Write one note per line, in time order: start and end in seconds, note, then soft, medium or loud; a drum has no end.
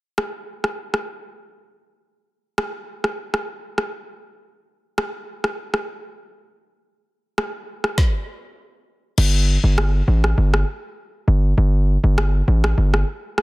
0.18 cross-stick loud
0.64 cross-stick medium
0.94 cross-stick medium
2.58 cross-stick loud
3.04 cross-stick medium
3.34 cross-stick medium
3.78 cross-stick medium
4.98 cross-stick loud
5.44 cross-stick medium
5.74 cross-stick medium
7.38 cross-stick loud
7.84 cross-stick medium
7.98 kick loud
7.98 snare medium
9.18 9.58 G1 loud
9.18 crash medium
9.64 10.02 G1 loud
9.78 cross-stick loud
10.08 10.34 A1 medium
10.24 cross-stick medium
10.38 10.64 G1 loud
10.54 cross-stick medium
11.28 11.54 G1 medium
11.58 11.97 G1 loud
12.04 12.42 G1 loud
12.18 cross-stick loud
12.48 12.74 A1 medium
12.64 cross-stick loud
12.78 13.04 G1 loud
12.94 cross-stick medium
13.38 cross-stick medium